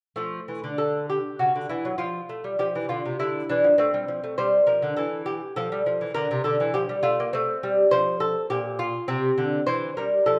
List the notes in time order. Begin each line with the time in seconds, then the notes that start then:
0.16 F3 A3
0.48 E3
0.64 D3
0.78 A4
1.10 G4
1.39 C#3 F#4
1.55 D3
1.69 E3 E4
1.85 F#3
1.98 F3 F4
2.29 A3
2.44 G3
2.59 F3 G4
2.75 E3
2.89 D3 F4
3.05 C3
3.20 D3 E4
3.49 E3 D4
3.64 F3
3.78 A3 C4
3.94 G3
4.08 F3
4.24 A3
4.38 G3 C5
4.67 F3 A#4
4.82 D3
4.96 E3 A4
5.26 G4
5.56 F3 A4
5.72 G3
5.86 F3
6.01 E3
6.14 D3 A#4
6.31 C3
6.44 D3 A4
6.60 E3
6.74 F3 G4
6.89 G3
7.03 A3 F4
7.20 A#3
7.33 A3 C4
7.63 G3
7.91 F3 C5
8.20 A4
8.50 A#2 G4
8.79 F4
9.08 C3 C4
9.38 D3
9.66 E3 C5
9.97 G3 A#4
10.26 F3 A4